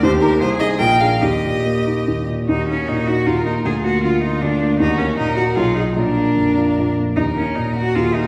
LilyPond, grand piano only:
\new Staff \with { instrumentName = "Grand piano" } { \time 3/4 \key ees \major \tempo 4 = 154 ees,8 <ees' bes'>8 c,8 <ees' aes'>8 bes,,8 <d' aes'>8 | ees,8 bes,8 bes8 ees'8 ees,8 bes,8 | \key ees \minor ees,8 bes8 bes,8 ees'8 ees,8 bes8 | d,8 bes8 d8 f'8 d,8 bes8 |
ees,8 bes8 bes,8 ges'8 ces,8 <aes' ees''>8 | bes,,8 bes8 f,8 f'8 bes,,8 bes8 | ees,8 bes8 bes,8 ges'8 ees,8 bes8 | }